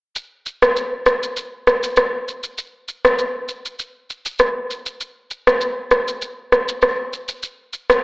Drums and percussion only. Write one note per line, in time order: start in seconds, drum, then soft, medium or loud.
0.16 shaker medium
0.46 shaker medium
0.62 cross-stick loud
0.62 shaker medium
0.76 shaker medium
1.06 cross-stick medium
1.06 shaker medium
1.23 shaker medium
1.37 shaker medium
1.67 cross-stick medium
1.67 shaker soft
1.83 shaker medium
1.96 cross-stick medium
1.96 shaker medium
2.28 shaker soft
2.43 shaker medium
2.58 shaker medium
2.88 shaker medium
3.05 cross-stick loud
3.05 shaker medium
3.19 shaker medium
3.49 shaker medium
3.66 shaker medium
3.79 shaker medium
4.10 shaker soft
4.26 shaker medium
4.39 cross-stick medium
4.39 shaker medium
4.71 shaker soft
4.86 shaker medium
5.01 shaker medium
5.31 shaker medium
5.47 cross-stick loud
5.47 shaker medium
5.61 shaker medium
5.91 cross-stick medium
5.91 shaker medium
6.08 shaker medium
6.22 shaker medium
6.52 cross-stick medium
6.52 shaker soft
6.68 shaker medium
6.82 cross-stick medium
6.82 shaker medium
7.13 shaker soft
7.28 shaker medium
7.43 shaker medium
7.73 shaker medium
7.90 cross-stick loud
7.90 shaker medium